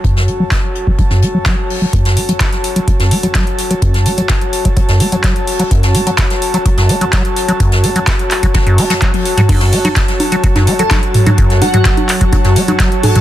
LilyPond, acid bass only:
\new Staff \with { instrumentName = "Acid bass" } { \clef bass \time 4/4 \key fis \minor \tempo 4 = 127 fis,8 a16 fis16 r8. fis16 fis16 fis,16 a16 fis16 fis16 r8 fis16 | fis,8 a16 fis16 r8. fis16 fis16 fis,16 a16 fis16 fis16 r8 fis16 | fis,8 a16 fis16 r8. fis16 fis16 fis,16 a16 fis16 fis16 r8 fis16 | fis,8 a16 fis16 r8. fis16 fis16 fis,16 a16 fis16 fis16 r8 fis16 |
fis,8 a16 fis16 r8. fis16 fis16 fis,16 a16 fis16 fis16 r8 fis16 | fis,8 a16 fis16 r8. fis16 fis16 fis,16 a16 fis16 fis16 r8 fis16 | fis,8 a16 fis16 r8. fis16 fis16 fis,16 a16 fis16 fis16 r8 fis16 | }